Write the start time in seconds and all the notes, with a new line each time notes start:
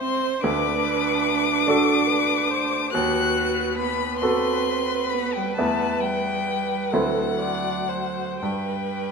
Already playing: C4 E4 C5
0.00 C4 C5 C6
0.42 D2 D4 B4 D6
1.66 D4 F#4 A4
2.07 B4
2.50 C5
2.92 D#2 F#4 B4 F#6
3.78 B3 B5
4.19 B3 F#4 A4 C6
4.24 C4
5.10 B5
5.14 B3
5.33 G3 G5
5.56 E2 B3 E4 B4 A5
5.60 A3
6.01 G3 G5
6.90 D2 F#3 C4 E4 A4 F#5
6.95 B4
7.40 D5
7.89 C5
8.42 G2 G3 B4 G5